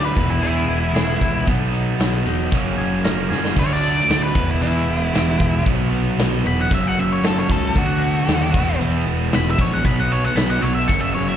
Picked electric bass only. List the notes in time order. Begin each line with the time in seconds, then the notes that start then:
Already playing: D2
0.17 E1
0.42 E2
0.69 E1
0.93 E1
1.21 C#2
1.47 B1
2.00 B1
2.26 E1
2.52 F#1
2.79 F#1
3.06 F#1
3.30 F#1
3.56 D2
4.10 D2
4.36 E1
4.61 E2
4.88 E1
5.14 E1
5.40 E1
5.66 B1
6.18 B1
6.44 E1
6.71 F#1
6.97 F#1
7.22 F#1
7.49 C#2
7.76 D2
8.28 D#2
8.54 E1
8.82 E2
9.07 E1
9.33 E1
9.58 A#1
9.85 B1
10.36 B1
10.63 B1
10.89 F#1
11.15 F#1